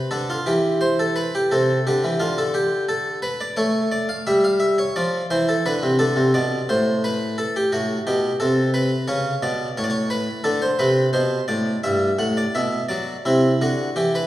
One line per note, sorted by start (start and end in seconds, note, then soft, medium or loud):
0.00 0.11 B4 medium
0.11 0.37 D3 medium
0.11 0.29 A4 medium
0.30 0.47 F4 medium
0.46 1.22 E3 medium
0.46 0.82 G4 medium
0.81 0.99 C5 medium
0.99 1.17 A4 medium
1.16 1.34 B4 medium
1.35 1.52 G4 medium
1.51 1.77 C3 medium
1.51 1.86 A4 medium
1.87 2.03 D3 medium
1.87 2.16 G4 medium
2.04 2.20 E3 medium
2.20 3.19 D3 medium
2.20 2.37 F4 medium
2.38 2.55 A4 medium
2.54 2.84 G4 medium
2.89 3.18 A4 medium
3.22 3.40 B4 medium
3.41 3.58 D5 medium
3.56 4.07 A3 medium
3.56 3.91 C#5 medium
3.92 4.09 D5 medium
4.09 4.27 F5 medium
4.27 4.76 G3 medium
4.27 4.44 E5 loud
4.44 4.61 F5 medium
4.60 4.78 E5 medium
4.78 4.95 C#5 medium
4.96 5.21 F3 medium
4.96 5.25 D5 medium
5.30 5.55 E3 medium
5.30 5.47 C5 medium
5.49 5.65 A4 medium
5.66 5.81 D3 medium
5.66 5.94 B4 medium
5.83 5.98 C3 medium
5.99 6.15 D3 medium
5.99 6.33 A4 medium
6.16 6.33 C3 medium
6.34 6.60 B2 medium
6.34 6.69 D5 medium
6.69 7.43 A2 medium
6.69 7.03 C5 medium
7.04 7.38 B4 medium
7.38 7.54 A4 medium
7.56 7.72 G4 medium
7.72 7.97 A2 medium
7.72 8.00 F#4 medium
8.07 8.31 B2 medium
8.07 8.35 G4 medium
8.40 8.90 C3 medium
8.40 8.69 A4 medium
8.74 9.08 B4 medium
9.08 9.33 C#3 medium
9.08 9.42 C#5 medium
9.42 9.67 B2 medium
9.42 9.77 D5 medium
9.77 10.26 A2 medium
9.77 9.84 C#5 medium
9.84 9.90 D5 medium
9.90 10.08 C#5 medium
10.10 10.44 B4 medium
10.44 10.69 D3 medium
10.44 10.61 A4 medium
10.62 10.79 C5 medium
10.79 11.04 C3 medium
10.79 11.08 B4 medium
11.13 11.39 B2 medium
11.13 11.43 C5 medium
11.48 11.74 A2 medium
11.48 11.78 D5 medium
11.84 12.09 G2 medium
11.84 12.19 E5 medium
12.19 12.44 A2 medium
12.19 12.36 F#5 medium
12.37 12.54 D5 medium
12.55 12.80 B2 medium
12.55 12.84 E5 medium
12.89 13.15 F#3 medium
12.89 13.25 D5 medium
13.25 13.51 C3 medium
13.25 13.61 E4 medium
13.61 13.87 D3 medium
13.61 13.97 F#4 medium
13.96 14.27 E3 medium
13.96 14.14 G4 medium
14.15 14.27 B4 medium